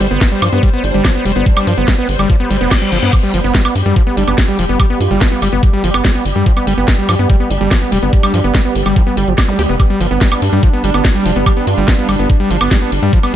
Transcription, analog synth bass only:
0.00 0.08 G1 medium
0.11 0.18 G1 medium
0.42 0.49 G2 medium
0.53 0.60 G2 medium
0.84 0.91 G1 loud
0.94 1.02 G1 medium
1.25 1.33 F1 loud
1.36 1.43 G1 medium
1.67 1.74 G2 loud
1.78 1.85 G1 medium
2.09 2.16 G1 medium
2.19 2.27 G1 medium
2.51 2.58 G1 loud
2.61 2.68 F1 medium
2.92 2.99 G1 medium
3.03 3.10 G2 medium
3.34 3.41 G1 medium
3.44 3.52 G1 medium
3.75 3.83 G2 medium
3.86 3.93 G2 medium
4.17 4.24 G1 loud
4.28 4.35 G1 medium
4.59 4.66 F1 medium
4.69 4.77 G1 medium
5.00 5.08 G2 loud
5.11 5.18 G1 medium
5.42 5.49 G1 medium
5.53 5.60 G1 medium
5.84 5.91 G1 loud
5.94 6.02 G1 medium
6.25 6.33 G1 medium
6.36 6.43 G2 medium
6.67 6.74 G1 medium
6.78 6.85 G1 medium
7.09 7.16 G2 medium
7.19 7.27 G2 medium
7.50 7.58 G1 loud
7.61 7.68 G1 medium
7.92 7.99 F1 medium
8.03 8.10 G1 medium
8.34 8.41 G2 medium
8.44 8.52 G1 medium
8.75 8.83 G1 medium
8.86 8.93 G1 medium
9.17 9.24 G1 loud
9.28 9.35 G1 medium
9.59 9.66 D2 medium
9.69 9.77 F1 medium
10.00 10.08 G1 loud
10.11 10.18 G1 medium
10.42 10.49 G2 medium
10.53 10.60 G2 medium
10.84 10.91 G1 loud
10.94 11.02 G1 medium
11.25 11.33 F1 medium
11.36 11.43 G1 medium
11.67 11.74 G2 loud
11.78 11.85 G1 medium
12.09 12.16 G1 medium
12.19 12.27 G1 medium
12.50 12.58 G1 loud
12.61 12.68 G1 medium
12.92 12.99 G1 medium
13.03 13.10 G2 medium

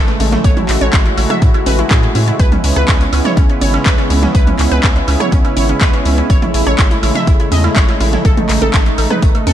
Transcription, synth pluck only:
0.08 0.15 A3 medium
0.20 0.27 A3 medium
0.33 0.39 A3 medium
0.44 0.51 C#5 loud
0.57 0.63 E4 medium
0.69 0.76 E4 medium
0.81 0.88 C#5 loud
0.93 1.00 E4 medium
1.06 1.12 E4 medium
1.18 1.24 E4 medium
1.30 1.37 E5 medium
1.42 1.49 E4 medium
1.54 1.61 E4 medium
1.66 1.73 B4 medium
1.79 1.85 E4 medium
1.91 1.98 G#4 medium
2.03 2.10 E4 medium
2.15 2.22 E4 medium
2.28 2.34 E4 medium
2.40 2.46 B4 loud
2.52 2.59 C#4 medium
2.64 2.71 C#4 medium
2.76 2.83 B4 medium
2.88 2.95 C#4 medium
3.01 3.07 C#4 medium
3.13 3.20 C#4 medium
3.25 3.32 C#5 medium
3.37 3.44 C#4 medium
3.50 3.56 C#4 medium
3.62 3.68 C#5 medium
3.74 3.81 C#4 medium
3.86 3.93 B4 loud
3.98 4.05 C#4 medium
4.10 4.17 C#4 medium
4.23 4.29 C#4 medium
4.35 4.42 B4 loud
4.47 4.54 C#4 medium
4.59 4.66 C#4 medium
4.72 4.78 B4 loud
4.83 4.90 C#4 medium
4.96 5.02 C#4 medium
5.08 5.15 C#4 medium
5.20 5.27 C#5 medium
5.32 5.39 C#4 medium
5.45 5.51 C#4 medium
5.57 5.64 C#5 medium
5.69 5.76 C#4 medium
5.81 5.88 B4 loud
5.94 6.00 C#4 medium
6.05 6.12 C#4 medium
6.18 6.24 C#4 medium
6.30 6.37 C#5 loud
6.42 6.49 E4 medium
6.54 6.61 E4 medium
6.67 6.73 C#5 loud
6.79 6.85 E4 medium
6.91 6.98 E4 medium
7.03 7.10 E4 medium
7.15 7.22 E5 medium
7.27 7.34 E4 medium
7.40 7.46 E4 medium
7.52 7.59 D#5 medium
7.64 7.71 E4 medium
7.76 7.83 C#5 loud
7.89 7.95 E4 medium
8.01 8.07 E4 medium
8.13 8.20 E4 medium
8.25 8.32 A4 medium
8.37 8.44 A3 medium
8.49 8.56 A3 medium
8.62 8.68 A4 medium
8.74 8.81 A3 medium
8.86 8.93 A3 medium
8.98 9.05 A3 medium
9.10 9.17 B4 medium
9.22 9.29 A3 medium
9.35 9.41 A3 medium
9.47 9.53 A4 medium

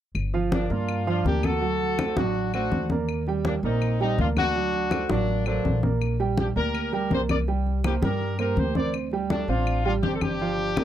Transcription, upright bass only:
0.15 0.66 G1 medium
0.70 1.21 G2 medium
1.24 2.11 D2 medium
2.16 2.68 A1 medium
2.71 3.57 D#2 medium
3.63 4.14 A#1 medium
4.18 5.04 D2 medium
5.10 5.61 A1 medium
5.65 6.50 A#1 medium
6.56 7.07 D2 medium
7.10 7.96 C2 medium
8.02 8.53 G2 medium
8.56 9.42 D2 medium
9.48 9.99 A1 medium
10.03 10.84 G1 medium

